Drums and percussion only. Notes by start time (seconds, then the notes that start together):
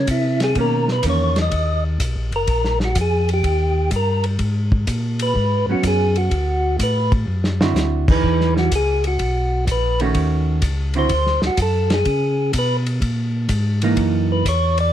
0.07 kick, hi-hat pedal, ride
0.40 snare, ride
0.55 kick, ride
0.88 snare
1.03 kick, hi-hat pedal, ride
1.36 snare, ride
1.51 kick, ride
2.00 kick, hi-hat pedal, ride
2.32 ride
2.47 kick, ride
2.64 snare
2.80 snare
2.95 kick, hi-hat pedal, ride
3.29 ride
3.44 kick, ride
3.91 kick, hi-hat pedal, ride
4.24 ride
4.39 kick, ride
4.72 kick
4.87 kick, hi-hat pedal, ride
5.19 ride
5.36 kick
5.83 kick, hi-hat pedal, ride
6.16 ride
6.31 kick, ride
6.79 kick, hi-hat pedal, ride
7.12 kick, ride
7.44 snare
7.61 snare
7.76 snare, hi-hat pedal
8.08 kick, crash
8.24 kick
8.41 snare
8.57 snare
8.72 kick, hi-hat pedal, ride
9.04 ride
9.19 kick, ride
9.67 kick, hi-hat pedal, ride
10.00 ride
10.14 kick, ride
10.62 kick, hi-hat pedal, ride
10.94 ride
11.09 kick, ride
11.26 snare
11.42 snare
11.57 kick, hi-hat pedal, ride
11.90 snare, ride
12.05 kick, ride
12.53 kick, hi-hat pedal, ride
12.86 ride
13.02 kick, ride
13.49 kick, hi-hat pedal, ride
13.82 ride
13.97 kick, ride
14.45 kick, hi-hat pedal, ride
14.78 ride